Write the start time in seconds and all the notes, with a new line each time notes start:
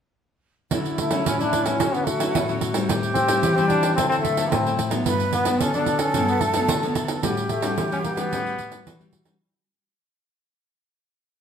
0.71 D3 F#3 C#4 E4, pandeiro
0.86 pandeiro
0.98 A3, pandeiro
1.11 F#3 C#4 E4, pandeiro
1.26 A2 C#4, pandeiro
1.40 F#3 C#4 D4 E4, pandeiro
1.53 pandeiro
1.65 F#3 C#4 E4, pandeiro
1.79 D3 F#3 C#4 E4 F#4, pandeiro
1.94 B3, pandeiro
2.06 A3, pandeiro
2.19 F#3 C#4 E4, pandeiro
2.34 A2, pandeiro
2.48 F#3 C#4 E4, pandeiro
2.61 pandeiro
2.74 G3 C4 E4, pandeiro
2.89 A2 G4, pandeiro
3.03 pandeiro
3.14 C4, pandeiro
3.28 G3 C4 E4, pandeiro
3.43 E3, pandeiro
3.55 G3 C4 E4, pandeiro
3.68 D4, pandeiro
3.83 pandeiro
3.96 D3 F#3 C4 E4 A4, pandeiro
4.09 C4, pandeiro
4.21 A3, pandeiro
4.37 F#3 C4 E4, pandeiro
4.50 A2 C4, pandeiro
4.66 F#3 C4 E4, pandeiro
4.79 pandeiro
4.91 F#3 B3 D4, pandeiro
5.06 G2 B4, pandeiro
5.20 pandeiro
5.33 B3, pandeiro
5.45 F#3 B3 D4, pandeiro
5.60 D3 C#4 A4, pandeiro
5.74 F#3 B3 D4, pandeiro
5.86 pandeiro
5.99 C#4, pandeiro
6.14 G2 F#3 B3 D4, pandeiro
6.28 B3, pandeiro
6.40 A3, pandeiro
6.53 F#3 B3 D4, pandeiro
6.68 D3, pandeiro
6.83 F#3 B3 D4, pandeiro
6.95 pandeiro
7.08 pandeiro
7.23 A2 G3 C#4 F#4 G4, pandeiro
7.37 pandeiro
7.49 A3, pandeiro
7.62 G3 C#4 F#4, pandeiro
7.77 E3, pandeiro
7.91 G3 C#4 F#4, pandeiro
8.04 B3, pandeiro
8.16 G3 C#4 F#4, pandeiro
8.30 A2 G3 C#4 F#4, pandeiro
8.46 pandeiro
8.59 pandeiro
8.70 G3 C#4 F#4, pandeiro
8.86 E3 F#4, pandeiro
8.99 G3 C#4 F#4, pandeiro
9.13 pandeiro
9.25 G3 C#4 F#4, pandeiro